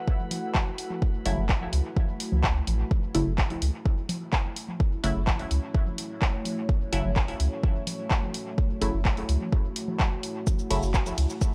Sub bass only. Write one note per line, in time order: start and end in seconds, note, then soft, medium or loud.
1.26 1.34 F#1 loud
1.38 1.67 F#1 medium
1.73 1.81 C#2 medium
2.32 2.62 C#2 medium
2.67 2.84 A1 medium
3.15 3.23 F#1 loud
3.27 3.56 F#1 medium
3.62 3.70 C#2 medium
5.04 5.12 F#1 loud
5.16 5.45 F#1 medium
5.51 5.59 C#2 medium
6.93 7.01 F#1 loud
7.05 7.34 F#1 medium
7.40 7.48 C#2 medium
8.82 8.90 F#1 loud
8.94 9.23 F#1 medium
9.29 9.37 C#2 medium
10.70 10.79 F#1 loud
10.83 11.12 F#1 medium
11.18 11.26 C#2 medium